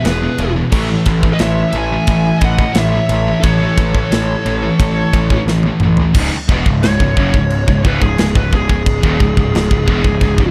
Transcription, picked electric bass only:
0, 0, Header, 1, 3, 480
1, 0, Start_track
1, 0, Key_signature, 4, "minor"
1, 0, Tempo, 677966
1, 511, Time_signature, 4, 2, 24, 8
1, 7440, End_track
2, 0, Start_track
2, 0, Title_t, "Picked electric bass"
2, 0, Program_c, 0, 34
2, 31, Note_on_c, 0, 28, 81
2, 191, Note_off_c, 0, 28, 0
2, 276, Note_on_c, 0, 28, 103
2, 434, Note_off_c, 0, 28, 0
2, 511, Note_on_c, 0, 33, 98
2, 671, Note_off_c, 0, 33, 0
2, 752, Note_on_c, 0, 33, 92
2, 912, Note_off_c, 0, 33, 0
2, 991, Note_on_c, 0, 33, 98
2, 1151, Note_off_c, 0, 33, 0
2, 1225, Note_on_c, 0, 33, 92
2, 1387, Note_off_c, 0, 33, 0
2, 1470, Note_on_c, 0, 33, 92
2, 1630, Note_off_c, 0, 33, 0
2, 1708, Note_on_c, 0, 33, 91
2, 1868, Note_off_c, 0, 33, 0
2, 1945, Note_on_c, 0, 33, 85
2, 2107, Note_off_c, 0, 33, 0
2, 2189, Note_on_c, 0, 33, 96
2, 2349, Note_off_c, 0, 33, 0
2, 2430, Note_on_c, 0, 33, 89
2, 2590, Note_off_c, 0, 33, 0
2, 2671, Note_on_c, 0, 33, 95
2, 2831, Note_off_c, 0, 33, 0
2, 2915, Note_on_c, 0, 33, 94
2, 3074, Note_off_c, 0, 33, 0
2, 3156, Note_on_c, 0, 33, 88
2, 3315, Note_off_c, 0, 33, 0
2, 3394, Note_on_c, 0, 33, 88
2, 3553, Note_off_c, 0, 33, 0
2, 3633, Note_on_c, 0, 33, 79
2, 3792, Note_off_c, 0, 33, 0
2, 3865, Note_on_c, 0, 33, 85
2, 4027, Note_off_c, 0, 33, 0
2, 4110, Note_on_c, 0, 33, 91
2, 4270, Note_off_c, 0, 33, 0
2, 4351, Note_on_c, 0, 25, 89
2, 4463, Note_off_c, 0, 25, 0
2, 4593, Note_on_c, 0, 28, 96
2, 4704, Note_off_c, 0, 28, 0
2, 4714, Note_on_c, 0, 25, 86
2, 4824, Note_off_c, 0, 25, 0
2, 4849, Note_on_c, 0, 25, 86
2, 4953, Note_off_c, 0, 25, 0
2, 4956, Note_on_c, 0, 25, 91
2, 5066, Note_off_c, 0, 25, 0
2, 5077, Note_on_c, 0, 30, 106
2, 5186, Note_off_c, 0, 30, 0
2, 5195, Note_on_c, 0, 25, 74
2, 5417, Note_off_c, 0, 25, 0
2, 5436, Note_on_c, 0, 25, 85
2, 5546, Note_off_c, 0, 25, 0
2, 5554, Note_on_c, 0, 25, 93
2, 5665, Note_off_c, 0, 25, 0
2, 5676, Note_on_c, 0, 25, 79
2, 5785, Note_off_c, 0, 25, 0
2, 5795, Note_on_c, 0, 25, 78
2, 5905, Note_off_c, 0, 25, 0
2, 5914, Note_on_c, 0, 25, 84
2, 6025, Note_off_c, 0, 25, 0
2, 6033, Note_on_c, 0, 25, 89
2, 6144, Note_off_c, 0, 25, 0
2, 6157, Note_on_c, 0, 25, 82
2, 6378, Note_off_c, 0, 25, 0
2, 6395, Note_on_c, 0, 27, 97
2, 6505, Note_off_c, 0, 27, 0
2, 6516, Note_on_c, 0, 25, 76
2, 6625, Note_off_c, 0, 25, 0
2, 6633, Note_on_c, 0, 25, 91
2, 6744, Note_off_c, 0, 25, 0
2, 6757, Note_on_c, 0, 25, 90
2, 6866, Note_off_c, 0, 25, 0
2, 6873, Note_on_c, 0, 25, 90
2, 6984, Note_off_c, 0, 25, 0
2, 6992, Note_on_c, 0, 28, 101
2, 7104, Note_off_c, 0, 28, 0
2, 7112, Note_on_c, 0, 25, 75
2, 7223, Note_off_c, 0, 25, 0
2, 7230, Note_on_c, 0, 25, 78
2, 7342, Note_off_c, 0, 25, 0
2, 7350, Note_on_c, 0, 25, 83
2, 7440, Note_off_c, 0, 25, 0
2, 7440, End_track
3, 0, Start_track
3, 0, Title_t, "Muted picked electric bass strokes"
3, 4473, Note_on_c, 9, 29, 42
3, 4544, Note_off_c, 9, 29, 0
3, 7440, End_track
0, 0, End_of_file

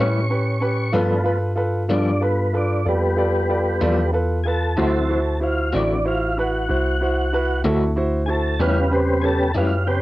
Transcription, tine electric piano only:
0, 0, Header, 1, 2, 480
1, 0, Start_track
1, 0, Tempo, 637823
1, 716, Time_signature, 12, 3, 24, 8
1, 7539, End_track
2, 0, Start_track
2, 0, Title_t, "Tine electric piano"
2, 0, Program_c, 0, 4
2, 0, Note_on_c, 0, 45, 83
2, 690, Note_off_c, 0, 45, 0
2, 704, Note_on_c, 0, 43, 72
2, 1408, Note_off_c, 0, 43, 0
2, 1426, Note_on_c, 0, 43, 84
2, 2129, Note_off_c, 0, 43, 0
2, 2150, Note_on_c, 0, 41, 76
2, 2851, Note_off_c, 0, 41, 0
2, 2874, Note_on_c, 0, 40, 89
2, 3573, Note_off_c, 0, 40, 0
2, 3591, Note_on_c, 0, 38, 79
2, 4291, Note_off_c, 0, 38, 0
2, 4317, Note_on_c, 0, 33, 91
2, 5014, Note_off_c, 0, 33, 0
2, 5037, Note_on_c, 0, 36, 82
2, 5734, Note_off_c, 0, 36, 0
2, 5750, Note_on_c, 0, 38, 90
2, 6450, Note_off_c, 0, 38, 0
2, 6469, Note_on_c, 0, 40, 76
2, 7169, Note_off_c, 0, 40, 0
2, 7187, Note_on_c, 0, 42, 92
2, 7539, Note_off_c, 0, 42, 0
2, 7539, End_track
0, 0, End_of_file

